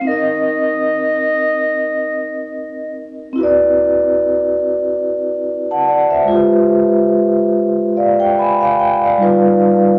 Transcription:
0.01 vibraphone C4 D#4
0.07 vibraphone A#4, flute D#5
0.11 vibraphone D#5
3.33 vibraphone C4 E4
3.38 vibraphone F#4 B4
3.43 vibraphone D5
5.71 vibraphone F#5 A5
5.88 vibraphone D5 F#5
6.10 vibraphone C5 E5
6.24 vibraphone G#3 F4
6.31 vibraphone G4 B4
7.97 vibraphone D5 F5
8.20 vibraphone G5
8.39 vibraphone G#5 B5
8.60 vibraphone F5 G#5
8.80 vibraphone G5
9.04 vibraphone D5 F5
9.18 vibraphone G3 D#4 F4
9.22 vibraphone B4

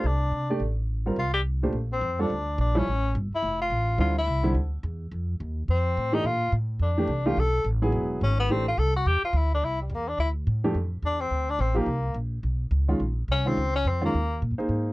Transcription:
0.04 upright bass C2, tenor saxophone D4
0.32 upright bass C3
0.50 grand piano A3 D4 G4 D5
0.60 upright bass A1
1.06 grand piano G3 C4 F4 A#4
1.16 upright bass C2, tenor saxophone F4
1.34 tenor saxophone G4
1.63 grand piano A#2 A3 D4 G4 C5
1.73 upright bass A#1
1.92 tenor saxophone C4
2.01 upright bass F2
2.19 grand piano G3 C4 F4 A4, tenor saxophone D4
2.30 upright bass D2
2.58 upright bass A#1, tenor saxophone D4
2.75 grand piano F3 G3 C#4 E4, tenor saxophone C#4
2.88 upright bass A1
3.15 upright bass G1
3.32 tenor saxophone E4, muted upright bass stroke
3.42 upright bass F1
3.62 tenor saxophone F4
3.70 upright bass A1
3.98 upright bass D2, grand piano D3 G3 C4 E4, tenor saxophone F4
4.18 tenor saxophone E4
4.27 upright bass C2
4.43 grand piano D3 G3 C4 E4
4.55 upright bass D2
4.83 upright bass E2
5.12 upright bass F2
5.40 upright bass D#2
5.68 upright bass F2, tenor saxophone C4
5.97 upright bass A2
6.12 grand piano E3 A3 D4 G4, tenor saxophone D#4
6.24 upright bass A#2, tenor saxophone F4
6.52 upright bass A2
6.79 upright bass F2, tenor saxophone D4
6.97 grand piano E3 A3 D4 G4
7.08 upright bass C2
7.26 grand piano E3 A3 D4 G4, tenor saxophone F4
7.37 upright bass B1, tenor saxophone A4
7.65 upright bass A1
7.82 grand piano F#3 B3 E4 G#4
7.92 upright bass E1
8.21 upright bass G#1, tenor saxophone C#4
8.40 tenor saxophone B3
8.49 upright bass A1, grand piano E3 A3 D4 G4, tenor saxophone C4
8.68 tenor saxophone F4
8.78 upright bass C2, tenor saxophone A4
8.96 tenor saxophone F#4
9.06 upright bass E2, tenor saxophone G4
9.23 tenor saxophone F4, muted upright bass stroke
9.33 upright bass D2, tenor saxophone E4
9.54 tenor saxophone D4
9.62 upright bass C2, tenor saxophone E4
9.82 tenor saxophone G3
9.90 upright bass E2
9.95 tenor saxophone A#3
10.08 tenor saxophone D4
10.18 upright bass D2, tenor saxophone E4
10.47 upright bass A2
10.64 grand piano F2 E3 A3 D4 G4
10.75 upright bass F2
11.02 upright bass E2, tenor saxophone D4
11.20 tenor saxophone C4
11.31 upright bass D2
11.50 tenor saxophone D4
11.59 upright bass A1, tenor saxophone C4
11.75 grand piano F3 A#3 D#4 G4, tenor saxophone A#3
11.86 upright bass C2
12.14 upright bass A#1
12.43 upright bass B1
12.71 upright bass C#2
12.88 grand piano D#3 G#3 C#4 F4
13.00 upright bass A#1
13.28 upright bass C2, tenor saxophone C#4
13.45 grand piano D#3 G#3 C#4 F4, tenor saxophone C4
13.57 upright bass C#2
13.76 tenor saxophone C#4
13.85 upright bass F2, tenor saxophone C4
14.01 grand piano D#3 G#3 C#4 F4, tenor saxophone A#3
14.14 upright bass D#2
14.42 upright bass A#2
14.51 upright bass F#2
14.58 grand piano A#3 D#4 G#4 C5
14.69 upright bass G#2

